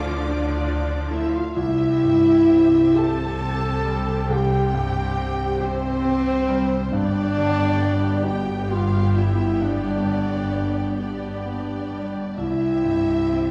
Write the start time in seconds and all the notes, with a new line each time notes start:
Already playing: D2 A2 D3 F3 A3 F4 A4 D5 D6
0.15 D4 D5
0.63 F4
1.09 A3 E4 E5
1.33 F4 F5
1.55 C2 C3 C4 E4 G4 E5 G5
2.03 G2
2.50 C4
2.95 G4 A4 A5
3.41 C4
3.85 G3
4.29 C2 G4 G5
4.74 G2
5.17 C4
5.59 C4 G4 C5
6.05 C4
6.49 G3
6.92 G1 G2 B3 D4 G4 D5 G5
7.37 D3
7.82 B3
8.24 G4 G5
8.70 B3 F4 F5
9.15 G3 E4 E5
9.61 G2 D4 D5
10.06 D3
10.52 B3
10.99 D4 G4 D5
11.45 B3
11.91 G3
12.36 C2 C3 C4 E4 G4 E5 G5
12.84 G2
13.31 C4